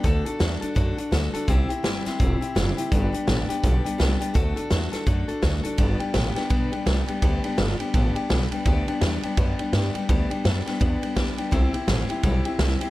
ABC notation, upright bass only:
X:1
M:4/4
L:1/8
Q:"Swing" 1/4=167
K:G
V:1 name="Upright bass" clef=bass
D,, z E,, z F,, z D,, z | C,, z G,,, z E,,, z F,,, z | G,,, z A,,, z B,,, z C,, z | D,, z E,, z F,, z D,, z |
G,,, z A,,, z B,,, z C,, z | D,, z G,,, z A,,, z B,,, z | D,, z E,, z F,, z G,, z | D,, z F,, z E,, z D,, z |
C,, z A,,, z B,,, z C,, z |]